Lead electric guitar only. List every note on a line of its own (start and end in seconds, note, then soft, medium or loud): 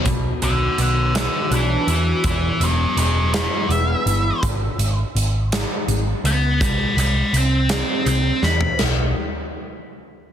0.43 0.79 D5 medium
0.43 0.78 F#5 medium
0.81 1.14 D5 medium
0.81 1.16 F#5 medium
1.17 1.50 D5 medium
1.17 1.52 F#5 medium
1.54 1.87 B4 medium
1.54 1.89 E5 medium
1.90 2.23 B4 medium
1.90 2.24 E5 medium
2.26 2.59 B4 medium
2.26 2.61 E5 medium
2.63 2.96 B4 medium
2.63 2.98 D5 medium
2.98 3.31 B4 medium
2.98 3.33 D5 medium
3.33 3.67 B4 medium
3.33 3.69 D5 medium
3.72 4.41 E5 medium
6.26 6.61 F#5 medium
6.26 6.61 B5 medium
6.61 6.95 G5 medium
6.61 6.97 B5 medium
7.00 7.32 G5 medium
7.00 7.34 B5 medium
7.37 7.69 G5 medium
7.37 7.70 C6 medium
7.71 8.04 G5 medium
7.71 8.06 C6 medium
8.08 8.41 G5 medium
8.08 8.43 C6 medium
8.44 8.79 B5 loud